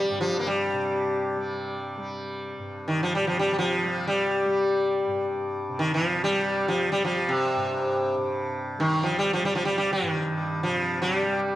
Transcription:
Already playing: G2 C3 G3
0.11 G2
0.21 F3
0.40 A#3
0.47 G3
0.73 C3
1.36 G3
1.97 G3
2.59 G2
2.88 D#3
3.03 F3
3.15 G3
3.20 C3
3.27 F3
3.39 G3
3.53 G3
3.59 F3
3.84 G3
4.07 G3
4.46 G3
5.07 G2
5.69 C3
5.79 D#3
5.94 F3
6.24 G3
6.31 G3
6.68 F3
6.92 G3
7.05 F3
7.29 C3
7.56 G2
8.17 C3
8.78 D#3 G3
9.03 F3
9.19 G3
9.33 F3
9.41 G3
9.45 G3
9.55 F3
9.65 G3
9.78 G3
9.93 D#3
10.02 G2
10.63 C3 F3
11.02 F#3
11.17 G3
11.27 G3

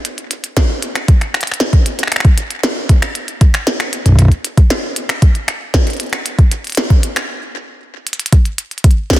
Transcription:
0.05 closed hi-hat
0.18 closed hi-hat
0.31 closed hi-hat
0.44 closed hi-hat
0.57 kick, snare, closed hi-hat
0.82 closed hi-hat
0.95 finger snap, closed hi-hat
1.08 kick, closed hi-hat
1.21 finger snap, closed hi-hat
1.34 finger snap, closed hi-hat
1.41 finger snap, closed hi-hat
1.47 closed hi-hat
1.51 finger snap, closed hi-hat
1.60 snare, closed hi-hat
1.73 kick, closed hi-hat
1.86 closed hi-hat
1.99 closed hi-hat
2.03 finger snap
2.07 finger snap
2.12 finger snap, closed hi-hat
2.16 finger snap
2.20 finger snap
2.25 kick, closed hi-hat
2.38 closed hi-hat
2.51 closed hi-hat
2.63 snare, closed hi-hat
2.89 kick, closed hi-hat
3.02 finger snap, closed hi-hat
3.15 closed hi-hat
3.28 closed hi-hat
3.41 kick, closed hi-hat
3.54 finger snap, closed hi-hat
3.67 snare, closed hi-hat
3.80 finger snap, closed hi-hat
3.93 closed hi-hat
4.06 kick, closed hi-hat
4.09 kick
4.12 kick
4.15 kick
4.19 kick, closed hi-hat
4.22 kick
4.25 kick
4.28 kick, closed hi-hat
4.45 closed hi-hat
4.57 kick, closed hi-hat
4.70 snare, closed hi-hat
4.96 closed hi-hat
5.09 finger snap, closed hi-hat
5.22 kick, closed hi-hat
5.35 closed hi-hat
5.48 finger snap, closed hi-hat
5.74 kick, snare, closed hi-hat
5.87 closed hi-hat
5.90 closed hi-hat
5.93 closed hi-hat
5.97 closed hi-hat
6.00 closed hi-hat
6.03 closed hi-hat
6.06 closed hi-hat
6.09 finger snap, closed hi-hat
6.13 closed hi-hat
6.26 closed hi-hat
6.39 kick, closed hi-hat
6.51 closed hi-hat
6.64 closed hi-hat
6.67 closed hi-hat
6.70 closed hi-hat
6.72 closed hi-hat
6.75 snare, closed hi-hat
6.90 kick, closed hi-hat
7.03 closed hi-hat
7.16 finger snap, closed hi-hat
8.07 closed hi-hat
8.13 closed hi-hat
8.20 closed hi-hat
8.26 closed hi-hat
8.32 kick, closed hi-hat
8.45 closed hi-hat
8.58 closed hi-hat
8.71 closed hi-hat
8.78 closed hi-hat
8.84 kick, closed hi-hat
8.91 closed hi-hat
9.10 kick, snare, closed hi-hat
9.13 snare, closed hi-hat
9.16 snare

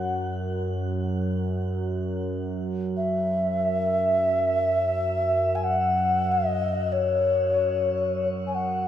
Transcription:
Already playing: F#2 F#5
2.96 E5
5.55 G#5
5.64 F#5
6.32 D#5
6.92 C#5
8.47 G#5
8.55 F#5
8.65 F#2

